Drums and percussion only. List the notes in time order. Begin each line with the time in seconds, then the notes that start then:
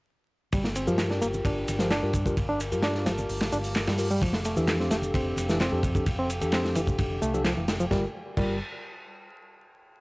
0.52 kick, ride, shaker
0.64 snare
0.76 ride, shaker
0.88 shaker
0.98 snare, clap, ride, shaker
1.10 snare
1.22 ride, shaker
1.34 low conga, shaker
1.45 kick, ride, shaker
1.68 ride, low conga, shaker
1.79 snare, shaker
1.90 snare, clap, ride, shaker
2.13 kick, ride, shaker
2.26 kick, shaker
2.37 kick, ride, shaker
2.60 ride, shaker
2.72 ride, shaker
2.83 snare, clap, ride, shaker
2.95 snare
3.06 snare, ride, shaker
3.18 low conga, shaker
3.29 open hi-hat, shaker
3.40 snare, ride
3.52 shaker
3.64 open hi-hat, shaker
3.75 snare, clap, ride, shaker
3.87 snare, ride
3.98 open hi-hat, shaker
4.11 shaker
4.22 kick, ride, shaker
4.33 snare
4.45 ride, shaker
4.57 shaker
4.68 snare, clap, ride, shaker
4.80 snare
4.91 snare, ride, shaker
5.02 low conga, shaker
5.14 kick, ride, shaker
5.36 ride, low conga, shaker
5.49 snare, shaker
5.61 snare, clap, ride, shaker
5.83 kick, ride, shaker
5.95 kick, shaker
6.06 kick, ride, shaker
6.30 ride, shaker
6.41 ride, shaker
6.52 snare, clap, ride, shaker
6.64 snare
6.75 ride, shaker
6.87 kick, low conga, shaker
6.98 kick, ride, shaker
7.22 shaker
7.34 shaker
7.44 snare, clap, ride, shaker
7.68 snare, ride, shaker
7.80 shaker
7.91 kick, snare
8.37 kick, crash